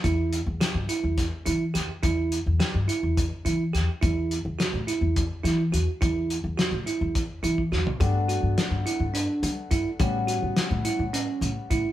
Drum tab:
HH |x-x-x-x-x-x-x-|x-x-x-x-x-x-x-|x-x-x-x-x-x-x-|x-x-x-x-x-x---|
SD |----o---o---o-|----o-------o-|----o-----o---|----o-------o-|
FT |--------------|--------------|--------------|-------------o|
BD |o-------o-----|o-------o-----|o-------o-----|o-------o--o--|

HH |x-x-x-x-x-x-x-|x-x-x-x-x-x-x-|
SD |----o---------|----o---------|
FT |--------------|--------------|
BD |o-----------o-|o-----------o-|